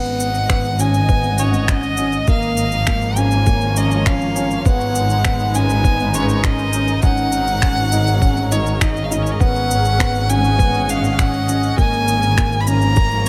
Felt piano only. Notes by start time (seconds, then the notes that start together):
Already playing: B3
0.49 B3
0.79 C#4
1.09 B3
1.38 C#4
1.68 C#4
1.98 C#4
2.28 A#3
2.87 A#3
3.17 C#4
3.47 A#3
3.76 C#4
4.06 C#4
4.36 C#4
4.66 B3
5.25 B3
5.54 C#4
5.84 B3
6.14 C#4
6.44 C#4
6.73 C#4
7.03 C#4
7.62 C#4
7.92 D#4
8.22 C#4
8.52 D#4
8.81 D#4
9.11 D#4
9.40 B3
9.99 B3
10.29 C#4
10.59 B3
10.88 C#4
11.19 C#4
11.48 C#4
11.78 A#3
12.37 A#3
12.67 C#4
12.96 A#3